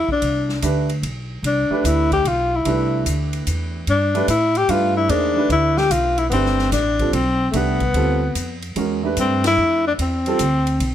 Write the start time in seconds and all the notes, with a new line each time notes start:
0.08 D4, muted upright bass stroke, kick
0.22 C2, ride
0.49 snare
0.62 D2 A3 D4 G4 B4, hi-hat pedal, ride
0.89 ride
1.02 B1, ride
1.43 C2 D4, ride
1.70 A3 D4 G4 B4, muted upright bass stroke
1.84 D2 E4, hi-hat pedal, ride
2.12 G4, kick, ride
2.25 B1 F4, ride
2.55 E4
2.65 C2 A3 D4 G4 B4, ride
3.06 D2, hi-hat pedal, ride
3.33 ride
3.47 E2, hi-hat pedal, ride
3.87 G2 D4, ride
4.14 A3 D4 G4 B4, ride
4.28 A2 E4, hi-hat pedal, ride
4.55 G4, ride
4.68 G2 A3 D4 F4 G4 B4, ride
4.97 E4
5.09 E2 A#3 D4 D#4 G#4 C5, ride
5.36 A3 D4 G4 B4
5.49 D2 E4, ride
5.77 G4, snare
5.90 B1 F4, hi-hat pedal, ride
6.18 E4, ride
6.29 G1 A3 B3 C4 D4, ride
6.33 G4 B4
6.45 snare
6.59 snare
6.72 A1 D4, snare, hi-hat pedal, ride
6.99 G3 C4 F4 A4, kick, ride
7.13 B1 C4, ride
7.51 C2 A3 B3 D4 G4, ride
7.56 B4
7.80 kick, ride
7.94 D2 G3 C4 F4 A4, ride
8.35 F2, hi-hat pedal, ride
8.62 ride
8.76 E2 G#3 C#4 F#4 A#4, ride
9.03 A3 D4 G4 B4
9.17 G2 C4, hi-hat pedal, ride
9.44 E4, snare, ride
9.57 F2
9.87 D4
9.99 E2 C4, ride
10.26 G3 C4 F4 A4, ride
10.39 D2, hi-hat pedal, ride
10.67 ride
10.80 B1, ride